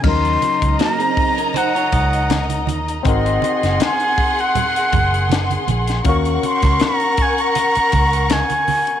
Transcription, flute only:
X:1
M:4/4
L:1/16
Q:"Swing 16ths" 1/4=80
K:Ebdor
V:1 name="Flute"
c'4 b4 g6 z2 | e4 a3 g6- g z2 | d'2 c'2 b2 a b4- b a4 |]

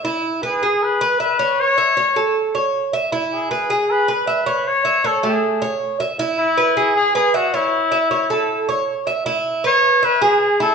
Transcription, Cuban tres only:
X:1
M:4/4
L:1/8
Q:1/4=156
K:E
V:1 name="Cuban tres"
E2 B G2 B e c- | c e c A2 c2 e | E2 B G2 B e c- | c e c A,2 c2 e |
E2 B G2 B e c- | c e c A2 c2 e | E2 B2 e G2 E |]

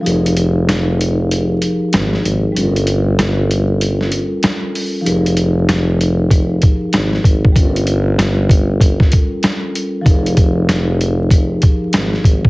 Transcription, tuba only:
X:1
M:4/4
L:1/16
Q:"Swing 16ths" 1/4=96
K:Fm
V:1 name="Tuba" clef=bass
F,,,8- F,,,3 z A,,,2 A,,,2 | G,,,8- G,,,3 z4 z | F,,,8- F,,,3 z A,,,2 A,,,2 | G,,,8- G,,,3 z4 z |
F,,,8- F,,,3 z A,,,2 A,,,2 |]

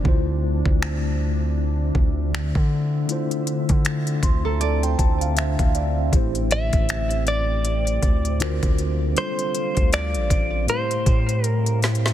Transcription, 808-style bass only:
X:1
M:4/4
L:1/16
Q:"Swing 16ths" 1/4=79
K:Dm
V:1 name="808-style bass" clef=bass
D,,3 D,,6- D,, D,,3 D,3- | D,3 D,3 D,,4 D,,3 D,,3 | A,,,3 A,,,6- A,,, D,,3 D,,3 | z3 D,,2 A,,, A,,,2 z2 A,,6 |]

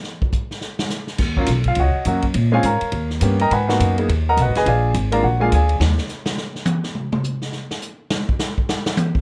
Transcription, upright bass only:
X:1
M:4/4
L:1/8
Q:"Swing" 1/4=208
K:Ebm
V:1 name="Upright bass" clef=bass
z8 | E,,2 C,,2 D,, z G,,2 | B,,2 A,, z E,,2 =G,,2 | A,,2 G,,2 E,,2 (3C,, A,,, G,,, |
B,,,2 A,,,2 B,,,2 =D,,2 | E,, z6 z | z8 | z8 |]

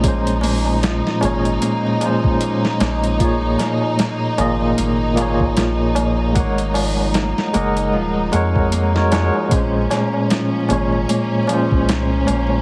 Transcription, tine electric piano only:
X:1
M:4/4
L:1/16
Q:"Swing 16ths" 1/4=76
K:Bbm
V:1 name="Tine electric piano"
[B,,A,Dc]6 [B,,A,Dd]4 [B,,A,Dc]6 | [B,,B,FAd]6 [B,,B,FAe]4 [B,,B,FAd]6 | [A,Bdg]6 [A,Beg]4 [A,Bdg]3 [A,GBd] [A,Bdg]2 | [B,,A,Dc]6 [B,,A,Dd]4 [B,,A,Dc]6 |]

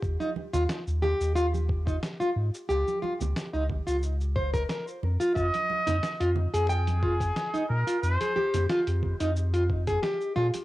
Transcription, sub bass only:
X:1
M:4/4
L:1/16
Q:"Swing 16ths" 1/4=90
K:Fm
V:1 name="Sub bass" clef=bass
E,, z2 E,, z E,,2 E,,4- E,, z2 A,, z | D,, z2 D,, z D,,2 D,,4- D,, z2 F,, z | F,, z2 F,, z F,,2 F,,4- F,, z2 B,, z | F,, z2 F,, z F,,2 F,,4- F,, z2 B,, z |]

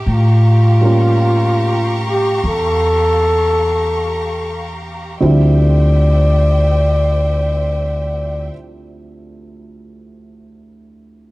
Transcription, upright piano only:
X:1
M:4/4
L:1/8
Q:"Swing" 1/4=39
K:Dm
V:1 name="Upright piano" clef=bass
z [G,B,^CF]6- [G,B,CF] | [D,,D,F,G,CE]8 |]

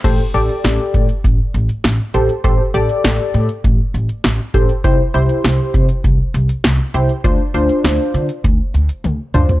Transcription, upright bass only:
X:1
M:4/4
L:1/16
Q:1/4=100
K:Am
V:1 name="Upright bass" clef=bass
A,,, z A,,, z A,,, z A,, z A,,, z A,,, z A,,, z A,,, z | A,,, z A,,, z A,,, z A,, z A,,, z A,,, z A,,, z A,,, z | C,, z C,, z C,, z C, z C,, z C,, z C,, z C,, z | D,, z D,, z D,, z D, z D,, z D,, z D,, z D,, z |]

